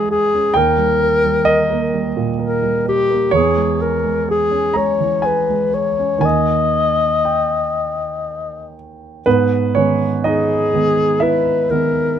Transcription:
Already playing: grand piano E2 E3 G#3 C#4 G#4 G#5 A#5, alto saxophone G#4
0.11 grand piano G#4, alto saxophone G#4
0.34 grand piano C#4
0.54 grand piano D#2 G5, alto saxophone A#4
0.77 grand piano G3
1.00 grand piano A#4
1.25 grand piano G3
1.45 grand piano A#4 D#5
1.70 grand piano A#3
1.93 grand piano G3
2.17 grand piano A#2
2.39 grand piano A#4, alto saxophone A#4
2.62 grand piano G3
2.85 alto saxophone G4, grand piano A#4
3.11 grand piano A#3
3.31 grand piano E2 C#5, alto saxophone G#4
3.57 grand piano G#3
3.80 grand piano G#4, alto saxophone A#4
4.04 grand piano G#3
4.28 grand piano G#4, alto saxophone G#4
4.51 grand piano C#4
4.74 grand piano G#3 A#5, alto saxophone C#5
5.00 grand piano E3
5.22 grand piano G#4 G#5, alto saxophone B4
5.50 grand piano G#3
5.73 grand piano G#4, alto saxophone C#5
5.99 grand piano C#4
6.18 grand piano D#2 D#3 A#3 A#4 G#5
6.25 alto saxophone D#5
7.25 grand piano G5
9.26 grand piano G#2 B3 B4
9.75 grand piano D#3 G#3 B3 C#4 C#5
10.24 grand piano D#4 D#5, alto saxophone G#4
10.73 grand piano D#3 G#3 B3
11.20 grand piano E4 E5, alto saxophone B4
11.70 grand piano D#3 G#3 B3, alto saxophone A#4

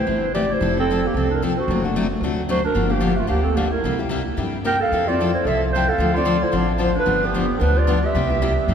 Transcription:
Already playing: clarinet E4 C5
0.07 upright bass G1, steel-string acoustic guitar C3 E3 A3 E4 G4
0.34 steel-string acoustic guitar C3 E3 A3 E4 G4, clarinet G4 D5
0.51 clarinet E4 C5
0.61 upright bass F1, steel-string acoustic guitar F3 C4 E4 A4
0.77 steel-string acoustic guitar C4 E4 A4, clarinet C4 A4
0.90 steel-string acoustic guitar F3 C4 E4 A4
1.06 clarinet A#3 G4
1.14 upright bass C2, steel-string acoustic guitar F3 C4 E4 A4, clarinet C4 A4
1.31 clarinet D4 A#4
1.42 steel-string acoustic guitar F3 C4 E4 A4, clarinet C4 A4
1.57 clarinet F#4 C5
1.68 upright bass F#1, steel-string acoustic guitar C3 F#3 A3 D4 F#4
1.84 steel-string acoustic guitar A3 D4 F#4
1.96 steel-string acoustic guitar C3 F#3 A3 D4 F#4
2.21 upright bass D2, steel-string acoustic guitar C3 F#3 A3 D4 F#4
2.49 steel-string acoustic guitar C3 F#3 A3 D4 F#4, clarinet F#4 C5
2.64 clarinet D4 A#4
2.75 upright bass G1, steel-string acoustic guitar D3 F3 A#3 D4 G4
2.88 clarinet A#3 G4, steel-string acoustic guitar A#3 D4 G4
3.00 steel-string acoustic guitar D3 F3 A#3 D4 G4
3.16 clarinet A3 F4
3.27 upright bass D2, steel-string acoustic guitar D3 F3 A#3 D4 G4, clarinet A#3 G4
3.42 clarinet C4 A4
3.55 steel-string acoustic guitar D3 F3 A#3 D4 G4, clarinet A#3 G4
3.71 clarinet E4 A#4
3.84 upright bass C2, steel-string acoustic guitar C3 G3 A#3 E4 G4
3.99 steel-string acoustic guitar A#3 E4 G4
4.09 steel-string acoustic guitar C3 G3 A#3 E4 G4
4.37 upright bass G2, steel-string acoustic guitar C3 G3 A#3 E4 G4
4.64 steel-string acoustic guitar C3 G3 A#3 E4 G4, clarinet A#4 G5
4.80 clarinet A4 F5
4.92 upright bass F2, steel-string acoustic guitar F3 C4 E4 A4
5.08 steel-string acoustic guitar C4 E4 A4, clarinet F4 D5
5.20 steel-string acoustic guitar F3 C4 E4 A4
5.34 clarinet E4 C5
5.45 upright bass C2, steel-string acoustic guitar F3 C4 E4 A4, clarinet A4 E5
5.73 steel-string acoustic guitar F3 C4 E4 A4, clarinet C5 G5
5.88 clarinet A4 F5
5.98 upright bass D2, steel-string acoustic guitar D3 F3 C4 D4 A4
6.13 steel-string acoustic guitar D4 A4, clarinet F4 D5
6.17 steel-string acoustic guitar C4
6.25 steel-string acoustic guitar D3 F3 C4 D4 A4
6.43 clarinet E4 C5
6.52 upright bass A1, steel-string acoustic guitar D3 F3 C4 D4 A4, clarinet F4
6.57 clarinet D5
6.78 steel-string acoustic guitar D3 F3 C4 D4 A4, clarinet F4
6.83 clarinet C5
6.95 clarinet D4
6.99 clarinet B4
7.06 upright bass G1, steel-string acoustic guitar D3 F3 B3 D4 G4
7.22 clarinet B3 G4, steel-string acoustic guitar B3 D4 G4
7.34 steel-string acoustic guitar D3 F3 B3 D4 G4
7.58 upright bass D2, steel-string acoustic guitar D3 F3 B3 D4 G4, clarinet C4 A#4
7.62 clarinet D4 B4
7.77 clarinet F4 D5
7.87 steel-string acoustic guitar D3 F3 B3 D4 G4
8.04 clarinet G4 E5
8.15 upright bass C2, steel-string acoustic guitar C3 G3 A#3 E4 G4
8.29 steel-string acoustic guitar A#3 E4 G4
8.42 steel-string acoustic guitar C3 G3 A#3 E4 G4
8.68 upright bass G2, steel-string acoustic guitar C3 G3 A#3 E4 G4

